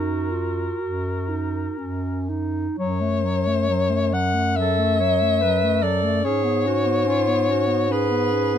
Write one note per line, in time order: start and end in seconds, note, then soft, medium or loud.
0.00 0.70 F#2 soft
0.00 0.33 D#4 soft
0.00 2.25 F#4 soft
0.00 2.28 A#4 soft
0.32 0.83 F4 soft
0.81 1.67 F#2 soft
0.81 1.31 F#4 soft
1.29 1.80 D#4 soft
1.78 2.67 F#2 soft
1.78 2.31 C#4 soft
2.30 2.78 D#4 soft
2.78 6.20 F#2 medium
2.78 3.03 F#3 medium
2.78 4.15 C#5 medium
3.01 3.26 A3 soft
3.24 3.49 F#3 soft
3.47 3.69 A3 soft
3.69 3.92 F#3 medium
3.90 4.14 A3 soft
4.13 4.36 F#3 soft
4.13 4.58 F#5 medium
4.34 4.56 A3 soft
4.56 4.80 F#3 soft
4.56 4.97 A4 medium
4.56 5.84 E5 medium
4.79 5.02 A3 soft
5.00 5.24 F#3 soft
5.00 5.43 C#5 medium
5.22 5.42 A3 soft
5.41 5.65 F#3 soft
5.41 5.84 B4 medium
5.64 5.84 A3 soft
5.82 6.05 F#3 soft
5.82 6.24 A4 medium
5.82 6.26 D5 medium
6.03 6.23 A3 soft
6.24 8.58 G#2 medium
6.24 6.45 C#4 medium
6.24 6.66 G#4 medium
6.24 7.93 C#5 medium
6.44 6.67 B3 soft
6.66 6.88 C#4 soft
6.66 7.08 F#4 medium
6.86 7.06 B3 soft
7.06 7.29 C#4 medium
7.06 7.53 F4 medium
7.27 7.50 B3 soft
7.49 7.69 C#4 soft
7.49 7.94 F#4 medium
7.67 7.88 B3 soft
7.89 8.12 C#4 medium
7.89 8.58 G#4 medium
7.89 8.58 B4 medium
8.11 8.34 B3 soft
8.32 8.56 C#4 soft
8.54 8.58 B3 soft